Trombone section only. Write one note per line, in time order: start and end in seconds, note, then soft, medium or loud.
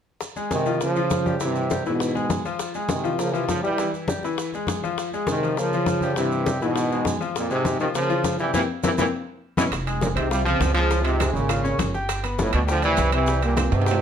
0.53 0.80 C3 medium
0.53 0.80 D#3 medium
0.82 1.37 C#3 medium
0.82 1.37 F3 medium
1.43 1.83 G2 medium
1.43 1.83 C3 medium
1.86 2.41 G#2 medium
1.86 2.41 B2 medium
2.90 3.18 C3 medium
2.90 3.17 D#3 medium
3.19 3.34 C#3 medium
3.19 3.34 F3 medium
3.33 3.49 C3 medium
3.33 3.48 E3 medium
3.48 3.63 C#3 medium
3.48 3.62 F3 medium
3.62 3.92 E3 medium
3.62 3.90 G3 medium
5.29 5.56 C3 medium
5.29 5.56 D#3 medium
5.58 6.17 C#3 medium
5.58 6.17 F3 medium
6.16 6.58 G2 medium
6.16 6.58 C3 medium
6.61 7.17 G#2 medium
6.61 7.17 B2 medium
7.36 7.49 F2 medium
7.36 7.49 A#2 medium
7.51 7.79 G#2 medium
7.51 7.78 C3 medium
7.81 7.88 C3 medium
7.81 7.87 D#3 medium
7.95 8.36 C#3 medium
7.95 8.36 F3 medium
8.40 8.53 C3 medium
8.40 8.53 E3 medium
8.54 8.61 A#2 medium
8.54 8.61 C3 medium
8.54 8.61 E3 medium
8.83 8.90 A#2 medium
8.83 8.90 C3 medium
8.83 8.91 E3 medium
8.97 9.05 A#2 medium
8.97 9.05 C3 medium
8.97 9.05 E3 medium
9.58 9.65 B2 medium
9.58 9.65 C#3 medium
9.58 9.65 E3 medium
10.03 10.10 F2 medium
10.03 10.09 A#2 medium
10.17 10.31 G#2 medium
10.17 10.30 C3 medium
10.31 10.46 C3 medium
10.31 10.45 G3 medium
10.45 10.74 C#3 medium
10.45 10.72 F3 medium
10.74 11.04 C#3 medium
10.74 11.02 F3 loud
11.02 11.33 G#2 medium
11.02 11.31 C3 medium
11.33 11.91 A#2 medium
11.33 11.89 C#3 medium
12.40 12.53 F2 medium
12.40 12.53 A2 medium
12.54 12.61 G2 medium
12.54 12.61 B2 medium
12.69 12.83 D3 medium
12.69 12.83 F3 medium
12.84 13.12 C3 medium
12.84 13.11 E3 loud
13.14 13.41 C3 medium
13.14 13.41 E3 medium
13.43 13.70 G2 medium
13.43 13.70 A#2 medium
13.74 14.02 G#2 medium
13.74 14.02 C3 medium